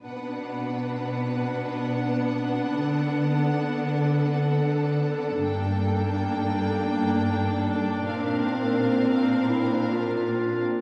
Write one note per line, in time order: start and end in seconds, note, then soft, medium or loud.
0.04 2.72 B2 soft
0.04 5.37 B3 soft
0.04 5.37 D4 soft
0.04 2.72 B4 soft
0.04 5.37 F#5 soft
2.77 5.37 D3 soft
2.77 8.03 A4 soft
5.41 8.03 G2 soft
5.41 8.03 A#3 soft
5.41 10.62 D4 soft
5.41 8.03 G5 soft
8.07 10.63 A#2 soft
8.07 10.63 C4 soft
8.07 10.63 A#4 soft
8.07 10.63 F5 soft
9.44 9.93 E4 medium
9.92 10.81 F4 soft